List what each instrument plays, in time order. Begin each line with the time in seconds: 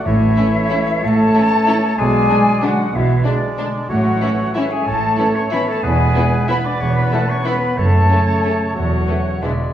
0.04 double bass section A1, cello section A2, timpani A2, french horn section E3, bassoon A3, clarinet E4, oboe C#5, flute section E5
0.37 trombone section E3 C#4, viola section A3, violin section C#4 E4
0.70 trombone section E3 C#4, viola section A3, violin section C#4 E4
1.02 double bass section A1, cello section A2, french horn section A3, bassoon A3, clarinet A4, oboe C#5, flute section A5
1.34 trombone section E3 C#4, viola section A3, violin section C#4 E4
1.67 trombone section E3 C#4, viola section A3, violin section C#4 E4
1.97 double bass section B1, cello section B2, french horn section G#3, bassoon G#3, clarinet G#4, oboe D5, flute section G#5
2.29 trombone section D3 D4, viola section G#3, violin section D4
2.62 trombone section D3 D4, french horn section F#3, viola section G#3, violin section D4, clarinet F#4, flute section F#5
2.94 double bass section B1, cello section B2, french horn section E3, clarinet E4, flute section E5
3.24 french horn section D3, trombone section D3 D4, bassoon G#3, viola section G#3, violin section D4, clarinet D4, flute section D5, oboe D5
3.58 trombone section D3 D4, viola section G#3, violin section D4
3.89 double bass section A1, timpani A2, cello section A2, french horn section F#3, bassoon A3, clarinet F#4, oboe C#5, flute section F#5
4.22 viola section E3, trombone section E3 C#4, violin section C#4 E4
4.55 french horn section E3, trombone section E3 C#4, viola section E3, bassoon A3, violin section C#4 E4, clarinet E4, oboe C#5, flute section E5
4.72 french horn section G#3, clarinet G#4, flute section G#5
4.86 double bass section A1, cello section A2, bassoon A3, french horn section A3, clarinet A4, oboe C#5, flute section A5
5.18 viola section E3, trombone section E3 C#4, violin section C#4 E4
5.35 french horn section C#4, clarinet C#5, flute section C#6
5.52 trombone section E3 C#4, viola section E3, french horn section B3, violin section C#4 E4, clarinet B4, flute section B5
5.68 french horn section A3, clarinet A4, flute section A5
5.83 double bass section E1, cello section E2, french horn section G#3, bassoon B3, clarinet G#4, oboe B4, flute section G#5
6.15 trombone section E3 B3, viola section E3, violin section B3 E4
6.48 trombone section E3 B3, viola section E3, french horn section B3, bassoon B3, violin section B3 E4, oboe B4, clarinet B4, flute section B5
6.64 french horn section D4, clarinet D5, flute section D6
6.80 double bass section E1, cello section E2, french horn section C#4, clarinet C#5, flute section C#6
6.95 french horn section B3, clarinet B4, flute section B5
7.11 trombone section E3 B3, viola section E3, french horn section A3, violin section B3 E4, clarinet A4, flute section A5
7.28 french horn section C#4, clarinet C#5, flute section C#6
7.45 trombone section E3 B3, viola section E3, french horn section B3, bassoon B3, violin section B3 E4, clarinet B4, oboe B4, flute section B5
7.77 double bass section F#1, cello section F#2, bassoon A3, french horn section A3, clarinet A4, oboe C#5, flute section A5
8.09 trombone section C#3 A3, viola section A3, violin section A3 C#4
8.43 trombone section C#3 A3, violin section A3 C#4, viola section A3
8.74 double bass section E1, cello section E2, french horn section F#3, bassoon A3, clarinet F#4, oboe C#5, flute section F#5
9.07 trombone section C#3 A3, viola section E3, violin section A3 C#4
9.42 double bass section E1, cello section E2, trombone section D3 G#3, viola section E3, french horn section E3, bassoon G#3, violin section G#3 D4, clarinet E4, oboe D5, flute section E5